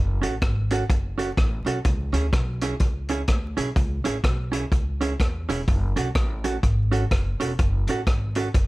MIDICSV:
0, 0, Header, 1, 5, 480
1, 0, Start_track
1, 0, Key_signature, 3, "minor"
1, 0, Tempo, 477707
1, 1865, Time_signature, 4, 2, 24, 8
1, 8714, End_track
2, 0, Start_track
2, 0, Title_t, "Hollow-body jazz guitar"
2, 0, Program_c, 0, 26
2, 216, Note_on_c, 0, 61, 69
2, 226, Note_on_c, 0, 66, 73
2, 233, Note_on_c, 0, 69, 84
2, 339, Note_off_c, 0, 61, 0
2, 345, Note_off_c, 0, 66, 0
2, 348, Note_off_c, 0, 69, 0
2, 715, Note_on_c, 0, 61, 77
2, 723, Note_on_c, 0, 66, 97
2, 727, Note_on_c, 0, 69, 103
2, 829, Note_off_c, 0, 61, 0
2, 833, Note_off_c, 0, 66, 0
2, 835, Note_off_c, 0, 69, 0
2, 1182, Note_on_c, 0, 61, 78
2, 1189, Note_on_c, 0, 66, 80
2, 1196, Note_on_c, 0, 69, 85
2, 1302, Note_off_c, 0, 61, 0
2, 1305, Note_off_c, 0, 66, 0
2, 1309, Note_off_c, 0, 69, 0
2, 1669, Note_on_c, 0, 61, 79
2, 1676, Note_on_c, 0, 66, 76
2, 1684, Note_on_c, 0, 69, 85
2, 1785, Note_off_c, 0, 61, 0
2, 1788, Note_off_c, 0, 66, 0
2, 1793, Note_off_c, 0, 69, 0
2, 2139, Note_on_c, 0, 61, 87
2, 2155, Note_on_c, 0, 64, 81
2, 2158, Note_on_c, 0, 68, 96
2, 2260, Note_off_c, 0, 61, 0
2, 2268, Note_off_c, 0, 64, 0
2, 2270, Note_off_c, 0, 68, 0
2, 2631, Note_on_c, 0, 61, 83
2, 2643, Note_on_c, 0, 64, 88
2, 2647, Note_on_c, 0, 68, 87
2, 2746, Note_off_c, 0, 61, 0
2, 2752, Note_off_c, 0, 64, 0
2, 2754, Note_off_c, 0, 68, 0
2, 3110, Note_on_c, 0, 61, 92
2, 3118, Note_on_c, 0, 64, 85
2, 3125, Note_on_c, 0, 68, 81
2, 3226, Note_off_c, 0, 61, 0
2, 3229, Note_off_c, 0, 64, 0
2, 3233, Note_off_c, 0, 68, 0
2, 3585, Note_on_c, 0, 61, 86
2, 3592, Note_on_c, 0, 64, 80
2, 3596, Note_on_c, 0, 68, 91
2, 3703, Note_off_c, 0, 61, 0
2, 3707, Note_off_c, 0, 64, 0
2, 3709, Note_off_c, 0, 68, 0
2, 4061, Note_on_c, 0, 61, 74
2, 4072, Note_on_c, 0, 64, 78
2, 4077, Note_on_c, 0, 68, 88
2, 4181, Note_off_c, 0, 61, 0
2, 4187, Note_off_c, 0, 64, 0
2, 4189, Note_off_c, 0, 68, 0
2, 4539, Note_on_c, 0, 61, 83
2, 4549, Note_on_c, 0, 64, 89
2, 4553, Note_on_c, 0, 68, 87
2, 4660, Note_off_c, 0, 61, 0
2, 4665, Note_off_c, 0, 64, 0
2, 4667, Note_off_c, 0, 68, 0
2, 5031, Note_on_c, 0, 61, 88
2, 5043, Note_on_c, 0, 64, 84
2, 5043, Note_on_c, 0, 68, 90
2, 5147, Note_off_c, 0, 61, 0
2, 5152, Note_off_c, 0, 68, 0
2, 5153, Note_off_c, 0, 64, 0
2, 5513, Note_on_c, 0, 61, 84
2, 5519, Note_on_c, 0, 64, 97
2, 5525, Note_on_c, 0, 68, 99
2, 5628, Note_off_c, 0, 61, 0
2, 5631, Note_off_c, 0, 64, 0
2, 5634, Note_off_c, 0, 68, 0
2, 5990, Note_on_c, 0, 61, 81
2, 5999, Note_on_c, 0, 66, 80
2, 6002, Note_on_c, 0, 69, 84
2, 6106, Note_off_c, 0, 61, 0
2, 6111, Note_off_c, 0, 66, 0
2, 6112, Note_off_c, 0, 69, 0
2, 6472, Note_on_c, 0, 61, 81
2, 6478, Note_on_c, 0, 66, 86
2, 6485, Note_on_c, 0, 69, 87
2, 6588, Note_off_c, 0, 61, 0
2, 6591, Note_off_c, 0, 66, 0
2, 6594, Note_off_c, 0, 69, 0
2, 6948, Note_on_c, 0, 61, 76
2, 6953, Note_on_c, 0, 66, 83
2, 6964, Note_on_c, 0, 69, 82
2, 7066, Note_off_c, 0, 61, 0
2, 7068, Note_off_c, 0, 66, 0
2, 7074, Note_off_c, 0, 69, 0
2, 7434, Note_on_c, 0, 61, 82
2, 7439, Note_on_c, 0, 66, 81
2, 7451, Note_on_c, 0, 69, 85
2, 7549, Note_off_c, 0, 61, 0
2, 7552, Note_off_c, 0, 66, 0
2, 7558, Note_off_c, 0, 69, 0
2, 7929, Note_on_c, 0, 61, 72
2, 7937, Note_on_c, 0, 66, 83
2, 7942, Note_on_c, 0, 69, 84
2, 8038, Note_off_c, 0, 61, 0
2, 8041, Note_off_c, 0, 66, 0
2, 8044, Note_off_c, 0, 69, 0
2, 8402, Note_on_c, 0, 61, 84
2, 8405, Note_on_c, 0, 66, 80
2, 8417, Note_on_c, 0, 69, 99
2, 8514, Note_off_c, 0, 61, 0
2, 8516, Note_off_c, 0, 66, 0
2, 8522, Note_off_c, 0, 69, 0
2, 8714, End_track
3, 0, Start_track
3, 0, Title_t, "Upright bass"
3, 0, Program_c, 1, 32
3, 0, Note_on_c, 1, 30, 105
3, 193, Note_off_c, 1, 30, 0
3, 234, Note_on_c, 1, 33, 85
3, 398, Note_off_c, 1, 33, 0
3, 424, Note_on_c, 1, 32, 87
3, 832, Note_off_c, 1, 32, 0
3, 900, Note_on_c, 1, 30, 92
3, 1310, Note_off_c, 1, 30, 0
3, 1381, Note_on_c, 1, 33, 104
3, 1627, Note_off_c, 1, 33, 0
3, 1654, Note_on_c, 1, 35, 91
3, 1825, Note_off_c, 1, 35, 0
3, 1856, Note_on_c, 1, 37, 105
3, 2104, Note_off_c, 1, 37, 0
3, 2133, Note_on_c, 1, 38, 95
3, 2305, Note_off_c, 1, 38, 0
3, 2339, Note_on_c, 1, 35, 98
3, 2749, Note_off_c, 1, 35, 0
3, 2815, Note_on_c, 1, 37, 90
3, 3227, Note_off_c, 1, 37, 0
3, 3300, Note_on_c, 1, 38, 96
3, 3546, Note_off_c, 1, 38, 0
3, 3588, Note_on_c, 1, 35, 88
3, 3753, Note_off_c, 1, 35, 0
3, 3779, Note_on_c, 1, 37, 102
3, 4026, Note_off_c, 1, 37, 0
3, 4066, Note_on_c, 1, 33, 92
3, 4232, Note_off_c, 1, 33, 0
3, 4262, Note_on_c, 1, 35, 90
3, 4671, Note_off_c, 1, 35, 0
3, 4739, Note_on_c, 1, 37, 80
3, 5150, Note_off_c, 1, 37, 0
3, 5228, Note_on_c, 1, 40, 97
3, 5471, Note_off_c, 1, 40, 0
3, 5512, Note_on_c, 1, 28, 84
3, 5676, Note_off_c, 1, 28, 0
3, 5704, Note_on_c, 1, 30, 115
3, 5949, Note_off_c, 1, 30, 0
3, 5992, Note_on_c, 1, 35, 97
3, 6157, Note_off_c, 1, 35, 0
3, 6180, Note_on_c, 1, 33, 91
3, 6591, Note_off_c, 1, 33, 0
3, 6664, Note_on_c, 1, 32, 95
3, 7074, Note_off_c, 1, 32, 0
3, 7143, Note_on_c, 1, 30, 89
3, 7390, Note_off_c, 1, 30, 0
3, 7432, Note_on_c, 1, 28, 79
3, 7597, Note_off_c, 1, 28, 0
3, 7628, Note_on_c, 1, 30, 116
3, 7873, Note_off_c, 1, 30, 0
3, 7907, Note_on_c, 1, 33, 91
3, 8075, Note_off_c, 1, 33, 0
3, 8110, Note_on_c, 1, 32, 91
3, 8518, Note_off_c, 1, 32, 0
3, 8583, Note_on_c, 1, 30, 94
3, 8714, Note_off_c, 1, 30, 0
3, 8714, End_track
4, 0, Start_track
4, 0, Title_t, "Muted hollow-body jazz guitar strokes"
4, 907, Note_on_c, 9, 29, 43
4, 1007, Note_off_c, 9, 29, 0
4, 3294, Note_on_c, 9, 29, 39
4, 3395, Note_off_c, 9, 29, 0
4, 4740, Note_on_c, 9, 29, 37
4, 4841, Note_off_c, 9, 29, 0
4, 7144, Note_on_c, 9, 29, 47
4, 7245, Note_off_c, 9, 29, 0
4, 8714, End_track
5, 0, Start_track
5, 0, Title_t, "Drums"
5, 229, Note_on_c, 9, 42, 92
5, 330, Note_off_c, 9, 42, 0
5, 417, Note_on_c, 9, 42, 73
5, 420, Note_on_c, 9, 36, 110
5, 422, Note_on_c, 9, 37, 121
5, 518, Note_off_c, 9, 42, 0
5, 521, Note_off_c, 9, 36, 0
5, 523, Note_off_c, 9, 37, 0
5, 708, Note_on_c, 9, 42, 77
5, 808, Note_off_c, 9, 42, 0
5, 900, Note_on_c, 9, 36, 108
5, 900, Note_on_c, 9, 42, 67
5, 1000, Note_off_c, 9, 36, 0
5, 1000, Note_off_c, 9, 42, 0
5, 1195, Note_on_c, 9, 42, 78
5, 1295, Note_off_c, 9, 42, 0
5, 1379, Note_on_c, 9, 42, 70
5, 1380, Note_on_c, 9, 36, 103
5, 1386, Note_on_c, 9, 37, 96
5, 1480, Note_off_c, 9, 42, 0
5, 1481, Note_off_c, 9, 36, 0
5, 1487, Note_off_c, 9, 37, 0
5, 1671, Note_on_c, 9, 42, 83
5, 1771, Note_off_c, 9, 42, 0
5, 1855, Note_on_c, 9, 42, 62
5, 1858, Note_on_c, 9, 36, 118
5, 1955, Note_off_c, 9, 42, 0
5, 1959, Note_off_c, 9, 36, 0
5, 2146, Note_on_c, 9, 42, 87
5, 2246, Note_off_c, 9, 42, 0
5, 2338, Note_on_c, 9, 36, 117
5, 2340, Note_on_c, 9, 42, 80
5, 2345, Note_on_c, 9, 37, 125
5, 2438, Note_off_c, 9, 36, 0
5, 2441, Note_off_c, 9, 42, 0
5, 2446, Note_off_c, 9, 37, 0
5, 2625, Note_on_c, 9, 42, 87
5, 2726, Note_off_c, 9, 42, 0
5, 2809, Note_on_c, 9, 42, 65
5, 2815, Note_on_c, 9, 36, 106
5, 2909, Note_off_c, 9, 42, 0
5, 2915, Note_off_c, 9, 36, 0
5, 3100, Note_on_c, 9, 42, 80
5, 3201, Note_off_c, 9, 42, 0
5, 3291, Note_on_c, 9, 42, 62
5, 3296, Note_on_c, 9, 36, 96
5, 3298, Note_on_c, 9, 37, 97
5, 3392, Note_off_c, 9, 42, 0
5, 3397, Note_off_c, 9, 36, 0
5, 3399, Note_off_c, 9, 37, 0
5, 3590, Note_on_c, 9, 42, 77
5, 3691, Note_off_c, 9, 42, 0
5, 3778, Note_on_c, 9, 36, 118
5, 3781, Note_on_c, 9, 42, 62
5, 3879, Note_off_c, 9, 36, 0
5, 3881, Note_off_c, 9, 42, 0
5, 4067, Note_on_c, 9, 42, 86
5, 4167, Note_off_c, 9, 42, 0
5, 4257, Note_on_c, 9, 36, 110
5, 4259, Note_on_c, 9, 42, 74
5, 4264, Note_on_c, 9, 37, 118
5, 4358, Note_off_c, 9, 36, 0
5, 4359, Note_off_c, 9, 42, 0
5, 4364, Note_off_c, 9, 37, 0
5, 4551, Note_on_c, 9, 42, 88
5, 4651, Note_off_c, 9, 42, 0
5, 4740, Note_on_c, 9, 36, 110
5, 4744, Note_on_c, 9, 42, 63
5, 4840, Note_off_c, 9, 36, 0
5, 4844, Note_off_c, 9, 42, 0
5, 5036, Note_on_c, 9, 42, 75
5, 5137, Note_off_c, 9, 42, 0
5, 5222, Note_on_c, 9, 36, 94
5, 5225, Note_on_c, 9, 42, 74
5, 5232, Note_on_c, 9, 37, 93
5, 5323, Note_off_c, 9, 36, 0
5, 5325, Note_off_c, 9, 42, 0
5, 5332, Note_off_c, 9, 37, 0
5, 5520, Note_on_c, 9, 42, 76
5, 5621, Note_off_c, 9, 42, 0
5, 5704, Note_on_c, 9, 42, 61
5, 5705, Note_on_c, 9, 36, 110
5, 5804, Note_off_c, 9, 42, 0
5, 5805, Note_off_c, 9, 36, 0
5, 5993, Note_on_c, 9, 42, 85
5, 6094, Note_off_c, 9, 42, 0
5, 6178, Note_on_c, 9, 42, 74
5, 6181, Note_on_c, 9, 36, 120
5, 6183, Note_on_c, 9, 37, 116
5, 6278, Note_off_c, 9, 42, 0
5, 6282, Note_off_c, 9, 36, 0
5, 6284, Note_off_c, 9, 37, 0
5, 6472, Note_on_c, 9, 42, 86
5, 6573, Note_off_c, 9, 42, 0
5, 6663, Note_on_c, 9, 42, 67
5, 6664, Note_on_c, 9, 36, 101
5, 6764, Note_off_c, 9, 36, 0
5, 6764, Note_off_c, 9, 42, 0
5, 6958, Note_on_c, 9, 42, 74
5, 7058, Note_off_c, 9, 42, 0
5, 7144, Note_on_c, 9, 42, 68
5, 7146, Note_on_c, 9, 36, 95
5, 7151, Note_on_c, 9, 37, 101
5, 7244, Note_off_c, 9, 42, 0
5, 7246, Note_off_c, 9, 36, 0
5, 7251, Note_off_c, 9, 37, 0
5, 7439, Note_on_c, 9, 42, 83
5, 7540, Note_off_c, 9, 42, 0
5, 7623, Note_on_c, 9, 42, 65
5, 7627, Note_on_c, 9, 36, 110
5, 7723, Note_off_c, 9, 42, 0
5, 7727, Note_off_c, 9, 36, 0
5, 7912, Note_on_c, 9, 42, 86
5, 8012, Note_off_c, 9, 42, 0
5, 8105, Note_on_c, 9, 42, 70
5, 8106, Note_on_c, 9, 36, 110
5, 8110, Note_on_c, 9, 37, 126
5, 8205, Note_off_c, 9, 42, 0
5, 8207, Note_off_c, 9, 36, 0
5, 8210, Note_off_c, 9, 37, 0
5, 8391, Note_on_c, 9, 42, 86
5, 8491, Note_off_c, 9, 42, 0
5, 8586, Note_on_c, 9, 36, 103
5, 8586, Note_on_c, 9, 42, 64
5, 8686, Note_off_c, 9, 36, 0
5, 8686, Note_off_c, 9, 42, 0
5, 8714, End_track
0, 0, End_of_file